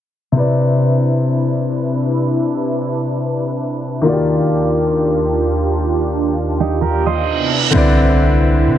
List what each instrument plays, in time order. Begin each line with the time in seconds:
0.32 grand piano C3 C4 E4, analog synth pad C3 D4 E4 B4
0.37 grand piano B4 D5
4.02 analog synth pad D#2 D4 F4 G4, grand piano D#3 A#3 F4
4.06 grand piano F#4 D5
4.13 grand piano G4
5.89 reverse cymbal
6.60 steel-string acoustic guitar D#4 G4
6.81 steel-string acoustic guitar G4 A#4
7.06 steel-string acoustic guitar C5 D#5
7.28 analog synth pad C3 B3 D4 E4
7.70 808-style bass C2, grand piano D3 C4 E4, analog synth pad C4 E4 B4, impact
7.75 grand piano B4 D5
8.67 808-style bass C3